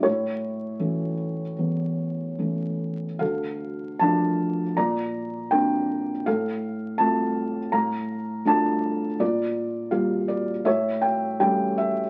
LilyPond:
<<
  \new Staff \with { instrumentName = "Felt piano" } { \time 4/4 \key d \minor \tempo 4 = 80 << { cis''4. r2 r8 | f''4 a''4 bes''4 g''4 | f''4 a''4 bes''4 a''4 | d''4 f''8 d''8 e''8 g''8 g''8 e''8 | } \\ { e'2 r2 | a'2 d''2 | a'2 f''2 | f'2 cis''2 | } >> }
  \new Staff \with { instrumentName = "Felt piano" } { \time 4/4 \key d \minor a,4 <e a cis'>4 e,4 <e a cis'>4 | d,4 <f a d'>4 bes,4 <bes c' d'>4 | a,4 <a c' f'>4 a,4 <a d' f'>4 | bes,4 <g bes f'>4 a,4 <g a cis'>4 | }
>>